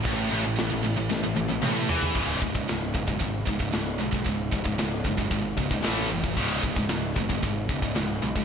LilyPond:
<<
  \new Staff \with { instrumentName = "Distorted electric guitar" } { \clef bass \time 4/4 \key cis \minor \tempo 4 = 114 a,8 a,16 a,16 a,16 a,16 a,16 a,16 a,16 a,16 a,16 a,16 a,8 e8 | r1 | r1 | r1 | }
  \new Staff \with { instrumentName = "Distorted electric guitar" } { \clef bass \time 4/4 \key cis \minor a,8 a,16 a,16 a,16 a,16 a,16 a,16 a,16 a,16 a,16 a,16 a,8 e8 | <cis, gis, cis>8 <cis, gis,>16 <cis, gis,>16 <cis, gis,>8 <cis, gis,>16 <cis, gis,>16 <cis, gis,>8 <cis, gis,>16 <cis, gis,>16 <cis, gis,>8 <cis, gis,>16 <cis, gis,>16 | <cis, gis,>8 <cis, gis,>16 <cis, gis,>16 <cis, gis,>8 <cis, gis,>16 <cis, gis,>16 <cis, gis,>8 <cis, gis,>16 <cis, gis,>16 <a, e a>8 <a, e>16 <a, e>16 | <cis, gis, cis>8 <cis, gis,>16 <cis, gis,>16 <cis, gis,>8 <cis, gis,>16 <cis, gis,>16 <cis, gis,>8 <cis, gis,>16 <cis, gis,>16 <cis, gis,>8 <cis, gis,>16 <cis, gis,>16 | }
  \new Staff \with { instrumentName = "Distorted electric guitar" } { \clef bass \time 4/4 \key cis \minor a,8 a,16 a,16 a,16 a,16 a,16 a,16 a,16 a,16 a,16 a,16 a,8 e8 | <cis, gis, cis>8 <cis, gis,>16 <cis, gis,>16 <cis, gis,>8 <cis, gis,>16 <cis, gis,>16 <cis, gis,>8 <cis, gis,>16 <cis, gis,>16 <cis, gis,>8 <cis, gis,>16 <cis, gis,>16 | <cis, gis,>8 <cis, gis,>16 <cis, gis,>16 <cis, gis,>8 <cis, gis,>16 <cis, gis,>16 <cis, gis,>8 <cis, gis,>16 <cis, gis,>16 <a, e a>8 <a, e>16 <a, e>16 | <cis, gis, cis>8 <cis, gis,>16 <cis, gis,>16 <cis, gis,>8 <cis, gis,>16 <cis, gis,>16 <cis, gis,>8 <cis, gis,>16 <cis, gis,>16 <cis, gis,>8 <cis, gis,>16 <cis, gis,>16 | }
  \new Staff \with { instrumentName = "Picked electric bass" } { \clef bass \time 4/4 \key cis \minor a,,8 a,,16 a,,16 a,,16 a,,16 a,,16 a,,16 a,,16 a,,16 a,,16 a,,16 a,,8 e,8 | cis,,8 cis,,8 cis,,8 fis,,8 gis,,8 cis,,8 cis,,8 b,,8 | cis,,8 cis,,8 cis,,8 fis,,8 gis,,8 cis,,8 a,,8 fis,,8 | cis,,8 cis,,8 cis,,8 fis,,8 gis,,8 cis,,8 cis,,8 b,,8 | }
  \new DrumStaff \with { instrumentName = "Drums" } \drummode { \time 4/4 <cymc bd>8 cymc8 <cymc sn>8 cymc8 sn8 tommh16 tommh16 toml8 tomfh16 tomfh16 | <bd rb>8 bd16 bd16 <rb sn>8 bd16 bd16 <bd rb>8 bd16 bd16 <rb sn>8. bd16 | <bd rb>8 bd16 bd16 <rb sn>8 bd16 bd16 <bd rb>8 bd16 bd16 <rb sn>8. bd16 | <bd rb>8 bd16 bd16 <rb sn>8 bd16 bd16 <bd rb>8 bd16 bd16 <rb sn>8. bd16 | }
>>